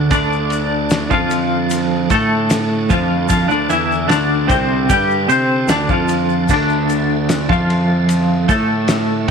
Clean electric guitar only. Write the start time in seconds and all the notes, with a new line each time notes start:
Already playing: D4
0.11 D3 D4
1.10 F3 F4
2.11 A3 A4
2.90 F3 F4
3.29 F3 F4
3.48 D3 D4
3.69 E3 E4
4.08 D3 D4
4.48 C3 C4
4.89 G3 G4
5.28 C4 C5
5.69 D3 D4
5.90 F3 F4
6.50 D3 D4
7.49 F3 F4
8.49 A3 A4